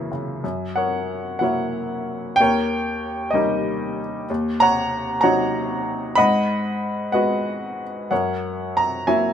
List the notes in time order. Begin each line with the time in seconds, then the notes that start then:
Already playing: F#2 C#3 E3 A#3 C#5 A#5
0.12 C#3
0.44 F#2
0.76 A#4 C#5 F#5
1.39 F#3 A#3 E4 A#4 F#5
1.43 C#5
2.36 D#2 G5
2.41 A#4 C#5
3.31 G3 C#4 D#5
3.35 D#4 G4 A#4
4.30 D#2
4.60 C#5 F#5 A#5
5.21 F#3 C#4 D#4 C#5 F#5 A#5
6.15 G#2 D#5 F#5 B5
7.12 G#3 B3 F#4 B4 D#5 F#5
8.11 F#2 A#4 C#5 F#5
8.77 A#5
9.07 F#3 A#3 E4 C#5 E5 G#5